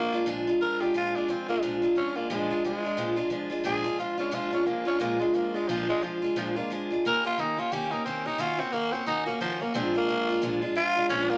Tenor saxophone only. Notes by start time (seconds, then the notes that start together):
Already playing: A#3
0.61 A#4
0.81 G4
0.97 F4
1.16 D4
1.30 C4
1.49 A#3
1.97 C#4
2.16 A#3
2.30 G#3
2.65 G#3
3.66 G#4
3.99 F4
4.20 C#4
4.35 F4
4.54 C#4
4.66 A#3
4.87 C#4
5.01 A#3
5.20 G#3
5.35 A#3
5.55 G#3
5.68 F3
5.89 G#3
6.03 F3
6.37 F3
6.57 A#3
7.07 A#4
7.26 F4
7.40 D#4
7.59 F4
7.72 G4
7.91 D#4
8.05 C4
8.27 D#4
8.40 F4
8.60 C4
8.73 A#3
8.92 C4
9.07 D#4
9.26 A#3
9.41 F3
9.62 A#3
9.75 C4
9.97 A#3
10.77 F4
11.09 C#4
11.30 A#3